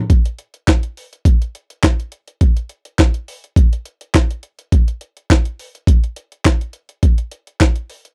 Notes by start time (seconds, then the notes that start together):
0.10 kick, closed hi-hat
0.25 closed hi-hat
0.39 closed hi-hat
0.54 closed hi-hat
0.68 kick, snare, clap, closed hi-hat
0.83 closed hi-hat
0.97 open hi-hat
1.13 closed hi-hat
1.25 kick, closed hi-hat
1.42 closed hi-hat
1.55 closed hi-hat
1.70 closed hi-hat
1.83 kick, snare, clap, closed hi-hat
2.00 closed hi-hat
2.12 closed hi-hat
2.28 closed hi-hat
2.41 kick, closed hi-hat
2.57 closed hi-hat
2.69 closed hi-hat
2.85 closed hi-hat
2.99 kick, snare, clap, closed hi-hat
3.14 closed hi-hat
3.28 open hi-hat
3.44 closed hi-hat
3.56 kick, closed hi-hat
3.73 closed hi-hat
3.85 closed hi-hat
4.01 closed hi-hat
4.14 kick, snare, clap, closed hi-hat
4.31 closed hi-hat
4.43 closed hi-hat
4.59 closed hi-hat
4.72 kick, closed hi-hat
4.88 closed hi-hat
5.01 closed hi-hat
5.17 closed hi-hat
5.30 kick, snare, clap, closed hi-hat
5.45 closed hi-hat
5.59 open hi-hat
5.75 closed hi-hat
5.87 kick, closed hi-hat
6.04 closed hi-hat
6.16 closed hi-hat
6.32 closed hi-hat
6.45 kick, snare, clap, closed hi-hat
6.61 closed hi-hat
6.73 closed hi-hat
6.89 closed hi-hat
7.03 kick, closed hi-hat
7.18 closed hi-hat
7.31 closed hi-hat
7.47 closed hi-hat
7.61 kick, snare, clap, closed hi-hat
7.76 closed hi-hat
7.90 open hi-hat
8.05 closed hi-hat